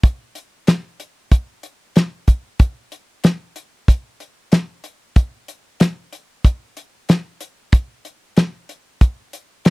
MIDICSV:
0, 0, Header, 1, 2, 480
1, 0, Start_track
1, 0, Tempo, 641163
1, 30, Time_signature, 4, 2, 24, 8
1, 7263, End_track
2, 0, Start_track
2, 0, Title_t, "Drums"
2, 26, Note_on_c, 9, 36, 114
2, 26, Note_on_c, 9, 42, 84
2, 100, Note_off_c, 9, 42, 0
2, 101, Note_off_c, 9, 36, 0
2, 264, Note_on_c, 9, 42, 61
2, 339, Note_off_c, 9, 42, 0
2, 504, Note_on_c, 9, 42, 94
2, 511, Note_on_c, 9, 38, 117
2, 578, Note_off_c, 9, 42, 0
2, 586, Note_off_c, 9, 38, 0
2, 747, Note_on_c, 9, 42, 62
2, 822, Note_off_c, 9, 42, 0
2, 985, Note_on_c, 9, 36, 84
2, 985, Note_on_c, 9, 42, 92
2, 1060, Note_off_c, 9, 36, 0
2, 1060, Note_off_c, 9, 42, 0
2, 1223, Note_on_c, 9, 42, 59
2, 1297, Note_off_c, 9, 42, 0
2, 1465, Note_on_c, 9, 42, 78
2, 1473, Note_on_c, 9, 38, 101
2, 1540, Note_off_c, 9, 42, 0
2, 1548, Note_off_c, 9, 38, 0
2, 1704, Note_on_c, 9, 42, 62
2, 1706, Note_on_c, 9, 36, 70
2, 1779, Note_off_c, 9, 42, 0
2, 1780, Note_off_c, 9, 36, 0
2, 1942, Note_on_c, 9, 42, 76
2, 1945, Note_on_c, 9, 36, 112
2, 2017, Note_off_c, 9, 42, 0
2, 2020, Note_off_c, 9, 36, 0
2, 2185, Note_on_c, 9, 42, 57
2, 2260, Note_off_c, 9, 42, 0
2, 2423, Note_on_c, 9, 42, 90
2, 2431, Note_on_c, 9, 38, 115
2, 2498, Note_off_c, 9, 42, 0
2, 2506, Note_off_c, 9, 38, 0
2, 2664, Note_on_c, 9, 42, 56
2, 2739, Note_off_c, 9, 42, 0
2, 2906, Note_on_c, 9, 36, 82
2, 2906, Note_on_c, 9, 42, 76
2, 2981, Note_off_c, 9, 36, 0
2, 2981, Note_off_c, 9, 42, 0
2, 3146, Note_on_c, 9, 42, 51
2, 3221, Note_off_c, 9, 42, 0
2, 3382, Note_on_c, 9, 42, 74
2, 3389, Note_on_c, 9, 38, 101
2, 3457, Note_off_c, 9, 42, 0
2, 3464, Note_off_c, 9, 38, 0
2, 3622, Note_on_c, 9, 42, 61
2, 3697, Note_off_c, 9, 42, 0
2, 3863, Note_on_c, 9, 42, 80
2, 3865, Note_on_c, 9, 36, 108
2, 3938, Note_off_c, 9, 42, 0
2, 3940, Note_off_c, 9, 36, 0
2, 4105, Note_on_c, 9, 42, 61
2, 4180, Note_off_c, 9, 42, 0
2, 4342, Note_on_c, 9, 42, 97
2, 4350, Note_on_c, 9, 38, 124
2, 4417, Note_off_c, 9, 42, 0
2, 4425, Note_off_c, 9, 38, 0
2, 4586, Note_on_c, 9, 42, 62
2, 4661, Note_off_c, 9, 42, 0
2, 4825, Note_on_c, 9, 36, 88
2, 4826, Note_on_c, 9, 42, 85
2, 4900, Note_off_c, 9, 36, 0
2, 4901, Note_off_c, 9, 42, 0
2, 5067, Note_on_c, 9, 42, 61
2, 5141, Note_off_c, 9, 42, 0
2, 5306, Note_on_c, 9, 42, 73
2, 5314, Note_on_c, 9, 38, 95
2, 5381, Note_off_c, 9, 42, 0
2, 5389, Note_off_c, 9, 38, 0
2, 5544, Note_on_c, 9, 42, 64
2, 5619, Note_off_c, 9, 42, 0
2, 5783, Note_on_c, 9, 42, 90
2, 5786, Note_on_c, 9, 36, 118
2, 5858, Note_off_c, 9, 42, 0
2, 5861, Note_off_c, 9, 36, 0
2, 6026, Note_on_c, 9, 42, 59
2, 6101, Note_off_c, 9, 42, 0
2, 6263, Note_on_c, 9, 42, 86
2, 6270, Note_on_c, 9, 38, 119
2, 6338, Note_off_c, 9, 42, 0
2, 6345, Note_off_c, 9, 38, 0
2, 6507, Note_on_c, 9, 42, 56
2, 6582, Note_off_c, 9, 42, 0
2, 6746, Note_on_c, 9, 42, 78
2, 6747, Note_on_c, 9, 36, 86
2, 6821, Note_off_c, 9, 42, 0
2, 6822, Note_off_c, 9, 36, 0
2, 6987, Note_on_c, 9, 42, 58
2, 7062, Note_off_c, 9, 42, 0
2, 7225, Note_on_c, 9, 42, 72
2, 7233, Note_on_c, 9, 38, 104
2, 7263, Note_off_c, 9, 38, 0
2, 7263, Note_off_c, 9, 42, 0
2, 7263, End_track
0, 0, End_of_file